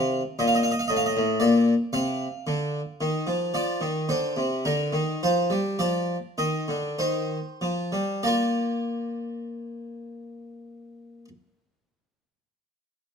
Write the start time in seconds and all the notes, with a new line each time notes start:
Already playing: C3 F5
0.39 A#2 D#5
0.47 F5
0.55 D#5
0.63 F5
0.71 D#5
0.79 F5
0.88 A2 D#5
0.96 F5
1.06 D#5
1.17 A2
1.40 A#2 D5
1.93 C3 F5
2.47 D3
3.01 D#3
3.27 F3
3.54 F3 D5
3.81 D#3
4.09 D3 C5
4.37 C3
4.65 D3 A#4
4.93 D#3
5.23 F3 C5
5.50 G3
5.79 F3 D5
6.38 D#3 D#5
6.68 D3
6.99 D#3 C5
7.61 F3
7.92 G3
8.23 A#3 F4 A#4 D5